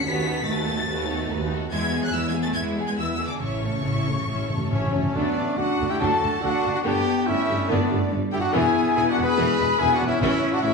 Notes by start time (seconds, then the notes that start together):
0.04 D#2 A3 B3 D#4 F#4 B4 B6
0.25 B3 D#4 F#4 A4
0.46 D#2 A3 D#4 F#4 B4 A6
0.66 B3 D#4 F#4 A4
0.88 D#2 A3 D#4 F#4 B4
1.09 B3 D#4 F#4 A4
1.29 D#2 A3 D#4 F#4 B4
1.49 B3 D#4 F#4 A4
1.70 E2 G#3 E4 B4 E5 G#6
1.92 B3 G#4 G#5
2.03 F#3 F#6
2.13 E2 E3 G#3 E4 B4 E5 E6
2.28 G#3 G#6
2.34 B3 G#4 G#5
2.42 A3 A6
2.54 E2 G#3 E4 B4 E5 G#6
2.77 B3 G#4 G#5
2.87 G#3 G#6
2.98 E2 E3 G#3 E4 B4 E5 E6
3.13 E3 E6
3.20 B3 G#4 G#5
3.26 D3 D6
3.40 A1 A2 C#3 C#4 E4 C#5 E5 C#6
3.50 A2
3.63 A2 A3 C#4 A4 C#5
3.73 A2
3.80 A2
3.85 A1 A2 C#4 E4 C#5 E5
3.96 A2
4.03 A2 A4 C#5
4.08 A2 A3 C#4
4.19 A2
4.25 A1 A2 C#4 E4 C#5 E5
4.33 A2
4.41 A2
4.49 A2 A3 C#4 A4 C#5
4.57 A2
4.64 A2
4.70 A1 A2 A3 C#4 E4 C#5 E5
4.79 A2
4.87 A2
4.93 A2 A3 C#4 A4 C#5
5.02 A2
5.14 D2 F#3 A3 B3 D4 D5
5.56 D2 D3 F#3 A3 D4 F#4 F#5
5.79 D2 D3 A3
5.88 E4 G4 G5
6.00 D2 F#3 D4 F#4 A4 A5
6.22 D2 D3 A3
6.41 D2 D3 F#3 D4 F#4 F#5
6.64 D2 D3 A3
6.74 D4 F#4 F#5
6.84 G1 G2 D3 B3 D4 G4 G5
7.27 G1 G2 D3 A3 C#4 E4 E5
7.48 G1 G2 D3 G3
7.69 G1 G2 D3 B3 D4 D5
7.90 G1 G2 D3 G3
8.11 G1 G2 D3 G3
8.32 G1 G2 D3 G3 E4 G4 G5
8.39 D4 F#4 F#5
8.52 E1 E2 E3 B3 E4 G#4 G#5
8.95 E1 E2 E3 E4 G#4 G#5
9.09 D4 F#4 F#5
9.16 E1 E2 E3 G#3
9.23 G#4 B4 B5
9.37 E1 E2 E3 G#3 B3
9.58 E1 E2 E3 G#3
9.79 E1 E2 E3 B3 E4 G#4 G#5
9.93 D4 F#4 F#5
10.00 E1 E2 E3 G#3
10.07 C#4 E4 E5
10.21 A1 A2 E3 C#4 E4 E5
10.53 D4 F#4 F#5
10.63 A1 C#3 E3 A3 C#4 E4 E5